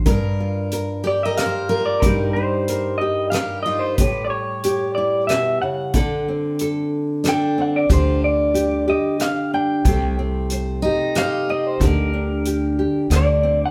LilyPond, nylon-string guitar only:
\new Staff \with { instrumentName = "Nylon-string guitar" } { \time 3/4 \key g \minor \tempo 4 = 92 << { bes'8 f'8 bes'8 g'8 bes'8 f'8 | <g ees' g'>8 ees'8 bes'8 g'8 bes'8 ees'8 | g'4 g'8 e'4. | a'8 c'8 a'4 a'8 c'8 |
g'4 g'8 g'8 g'8 d'8 | <a c' g' c''>8 c'8 c''8 g'8 c''8 c'8 | g'8 d'8 g'8 g'8 c''8 c'8 | } \\ { g,2. | g,2. | a,2 b,8 cis8 | d2. |
d2. | c2. | d2 d4 | } >> }